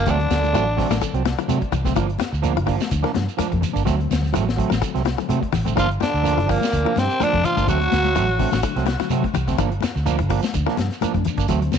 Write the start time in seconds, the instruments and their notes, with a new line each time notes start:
Already playing: tenor saxophone A#3
0.06 fingered electric bass D2, trombone section D3, clean electric guitar F#3 A3 C4, kick, closed hi-hat, low conga, shekere
0.10 tenor saxophone D4
0.19 reed electric piano D3 F#3 A3 C4, muted clean electric guitar stroke, closed hi-hat
0.30 fingered electric bass D2, snare, closed hi-hat, high conga, shekere
0.43 muted clean electric guitar stroke, closed hi-hat, high conga, shekere
0.53 fingered electric bass A1, clean electric guitar F#3 A3 C4, five-string banjo F#4, closed hi-hat, shekere
0.67 muted clean electric guitar stroke
0.77 reed electric piano D3 F#3 A3 C4, clean electric guitar F#3 A3 C4, kick, snare, open hi-hat, shekere
0.90 fingered electric bass A1, five-string banjo A#4, muted clean electric guitar stroke, snare, closed hi-hat, high conga, low conga, shekere
1.01 five-string banjo A4, muted clean electric guitar stroke, kick, closed hi-hat, shekere
1.13 fingered electric bass C2, clean electric guitar F#3 C4, muted clean electric guitar stroke, closed hi-hat
1.25 five-string banjo G4, reed electric piano F#5, snare, closed hi-hat, high conga, shekere
1.38 reed electric piano D3 F#3 A3 C4, five-string banjo F#4, closed hi-hat, shekere
1.48 fingered electric bass C3, clean electric guitar F#3 A3 C4, reed electric piano D5, closed hi-hat, high conga, shekere
1.60 muted clean electric guitar stroke, kick, closed hi-hat
1.72 fingered electric bass C2, five-string banjo G4, muted clean electric guitar stroke, closed hi-hat, low conga, shekere
1.85 reed electric piano D3 F#3 A3 C4, clean electric guitar A3 C4, kick, snare, closed hi-hat, high conga, shekere
1.95 fingered electric bass G1, clean electric guitar F3 A#3 D4, five-string banjo F4, kick, closed hi-hat, low conga, shekere
2.09 muted clean electric guitar stroke, closed hi-hat
2.19 five-string banjo G4, snare, closed hi-hat, high conga, shekere
2.32 fingered electric bass D2, muted clean electric guitar stroke, shekere
2.42 reed electric piano C3 F3 A#3 D4, clean electric guitar F3 A#3 D4, closed hi-hat, shekere
2.55 fingered electric bass G1, five-string banjo F4, muted clean electric guitar stroke, closed hi-hat
2.66 clean electric guitar F3 A#3 D4, five-string banjo G4, kick, open hi-hat, shekere
2.78 muted clean electric guitar stroke, snare, high conga, shekere
2.89 fingered electric bass D2, reed electric piano C3 F3 A#3 D4, muted clean electric guitar stroke, kick, closed hi-hat, shekere
3.03 clean electric guitar F3 A#3 D4, five-string banjo A#4, snare
3.13 fingered electric bass G2, muted clean electric guitar stroke, snare, closed hi-hat, high conga, shekere
3.29 closed hi-hat, shekere
3.37 clean electric guitar F3 D4, five-string banjo A#4, muted fingered electric bass stroke, closed hi-hat, high conga, shekere
3.50 fingered electric bass F2, reed electric piano C3 F3 A#3 C4, muted clean electric guitar stroke, kick, closed hi-hat
3.61 muted clean electric guitar stroke, muted fingered electric bass stroke, closed hi-hat, low conga, shekere
3.73 fingered electric bass G1, clean electric guitar A#3 D4, kick, closed hi-hat, shekere
3.85 fingered electric bass D2, clean electric guitar F#3 A3 C4, kick, snare, closed hi-hat, low conga, shekere
3.98 reed electric piano D3 F#3 A3 C4, muted clean electric guitar stroke, closed hi-hat
4.11 fingered electric bass D2, snare, closed hi-hat, high conga, shekere
4.22 muted clean electric guitar stroke, snare, closed hi-hat, high conga, shekere
4.33 fingered electric bass A1, clean electric guitar F#3 A3 C4, five-string banjo F#4, closed hi-hat, shekere
4.47 muted clean electric guitar stroke, snare
4.57 reed electric piano D3 F#3 A3 C4, clean electric guitar F#3 A3 C4, kick, closed hi-hat, shekere
4.70 fingered electric bass A1, five-string banjo A#4, muted clean electric guitar stroke, snare, closed hi-hat, high conga, shekere
4.81 five-string banjo A4, muted clean electric guitar stroke, kick, closed hi-hat, shekere
4.94 fingered electric bass C2, clean electric guitar F#3 A3 C4, snare, closed hi-hat
5.05 five-string banjo G4, snare, closed hi-hat, high conga, shekere
5.17 reed electric piano D3 F#3 A3 C4, five-string banjo A4, closed hi-hat, shekere
5.29 fingered electric bass C3, clean electric guitar F#3 A3 C4, reed electric piano D5, closed hi-hat, high conga, shekere
5.41 muted clean electric guitar stroke, kick, closed hi-hat, high conga
5.52 fingered electric bass A1, five-string banjo G4, reed electric piano F#5, muted clean electric guitar stroke, snare, open hi-hat, low conga, shekere
5.65 reed electric piano D3 F#3 A3 C4, clean electric guitar A3 C4, kick, closed hi-hat, high conga, shekere
5.75 fingered electric bass G1, clean electric guitar F3 A#3 D4, trombone section F3, trombone F3, five-string banjo F4, tenor saxophone F4, kick, closed hi-hat, low conga, shekere
5.89 muted clean electric guitar stroke, closed hi-hat
6.00 trombone section D3, trombone D3, tenor saxophone D4, five-string banjo G4, snare, closed hi-hat, high conga, shekere
6.12 fingered electric bass D2, muted clean electric guitar stroke, shekere
6.23 reed electric piano C3 F3 A#3 D4, clean electric guitar F3 A#3 D4, closed hi-hat, shekere
6.36 fingered electric bass G1, five-string banjo F4, muted clean electric guitar stroke, closed hi-hat
6.46 trombone section A#2, trombone A#2, clean electric guitar F3 D4, tenor saxophone A#3, five-string banjo G4, kick, shekere
6.51 open hi-hat
6.61 muted clean electric guitar stroke, snare, high conga, shekere
6.71 fingered electric bass D2, reed electric piano C3 F3 A#3 D4, muted clean electric guitar stroke, kick, closed hi-hat, shekere
6.85 clean electric guitar F3 A#3 D4, five-string banjo A#4
6.96 fingered electric bass G2, trombone section C3, trombone C3, tenor saxophone C4, snare, closed hi-hat, high conga, shekere
7.10 closed hi-hat, shekere
7.20 trombone D3, trombone section D3, clean electric guitar F3 A#3 D4, tenor saxophone D4, five-string banjo A#4, muted fingered electric bass stroke, closed hi-hat, high conga, shekere
7.32 fingered electric bass F2, reed electric piano C3 F3 A#3 D4, muted clean electric guitar stroke, kick, closed hi-hat, high conga
7.43 trombone section F3, trombone F3, tenor saxophone F4, muted clean electric guitar stroke, muted fingered electric bass stroke, closed hi-hat, low conga, shekere
7.56 fingered electric bass G1, clean electric guitar A#3 D4, kick, closed hi-hat, high conga, shekere
7.66 fingered electric bass D2, trombone section F#3, clean electric guitar F#3 A3 C4, trombone F#3, tenor saxophone F#4, kick, closed hi-hat, low conga, shekere
7.79 reed electric piano D3 F#3 A3 C4, muted clean electric guitar stroke, closed hi-hat
7.92 fingered electric bass D2, snare, closed hi-hat, high conga, shekere
8.04 muted clean electric guitar stroke, closed hi-hat, high conga, shekere
8.15 fingered electric bass A1, clean electric guitar F#3 A3 C4, five-string banjo F#4, closed hi-hat, shekere
8.28 muted clean electric guitar stroke
8.39 reed electric piano D3 F#3 A3 D4, clean electric guitar A3 C4, muted clean electric guitar stroke, kick, snare, open hi-hat, shekere
8.52 fingered electric bass A1, five-string banjo A#4, muted clean electric guitar stroke, snare, closed hi-hat, high conga, shekere
8.63 five-string banjo A4, muted clean electric guitar stroke, kick, closed hi-hat, shekere
8.76 fingered electric bass C2, clean electric guitar F#3 A3 C4, snare, closed hi-hat
8.86 five-string banjo G4, muted clean electric guitar stroke, snare, closed hi-hat, high conga, shekere
8.99 reed electric piano D3 F#3 A3 C4, five-string banjo F#4, snare, closed hi-hat, shekere
9.10 fingered electric bass C3, clean electric guitar F#3 A3 C4, closed hi-hat, high conga, shekere
9.23 muted clean electric guitar stroke, kick, closed hi-hat, high conga
9.34 fingered electric bass C2, five-string banjo G4, muted clean electric guitar stroke, closed hi-hat, low conga, shekere
9.46 reed electric piano D3 F#3 A3 C4, clean electric guitar A3 C4, kick, snare, closed hi-hat, shekere
9.57 fingered electric bass G1, clean electric guitar F3 A#3 D4, muted five-string banjo stroke, kick, closed hi-hat, low conga, shekere
9.71 muted clean electric guitar stroke, closed hi-hat
9.81 muted five-string banjo stroke, snare, closed hi-hat, high conga, shekere
9.95 fingered electric bass D2, muted clean electric guitar stroke, snare, shekere
10.05 reed electric piano C3 F3 A#3 D4, clean electric guitar F3 A#3 D4, closed hi-hat, shekere
10.18 fingered electric bass G1, muted clean electric guitar stroke, muted five-string banjo stroke, closed hi-hat
10.29 clean electric guitar F3 A#3 D4, five-string banjo G4, kick, open hi-hat, shekere
10.43 muted clean electric guitar stroke, snare, high conga, shekere
10.54 fingered electric bass D2, reed electric piano C3 F3 A#3 D4, muted clean electric guitar stroke, kick, closed hi-hat, shekere
10.66 clean electric guitar F3 A#3 D4, five-string banjo A#4, snare
10.77 fingered electric bass G2, muted clean electric guitar stroke, snare, closed hi-hat, high conga, shekere
10.91 snare, closed hi-hat, shekere
11.01 clean electric guitar F3 A#3 D4, five-string banjo A#4, muted fingered electric bass stroke, closed hi-hat, high conga, shekere
11.13 fingered electric bass F2, reed electric piano C3 F3 A#3 D4, kick, closed hi-hat, high conga
11.25 muted clean electric guitar stroke, muted fingered electric bass stroke, closed hi-hat, low conga, shekere
11.37 fingered electric bass G1, clean electric guitar A#3 D4, kick, closed hi-hat, shekere
11.48 fingered electric bass D2, clean electric guitar F#3 A3 C4, kick, closed hi-hat, low conga, shekere
11.61 reed electric piano D3 F#3 A3 C4, muted clean electric guitar stroke, closed hi-hat
11.72 fingered electric bass D2, snare, closed hi-hat, high conga, shekere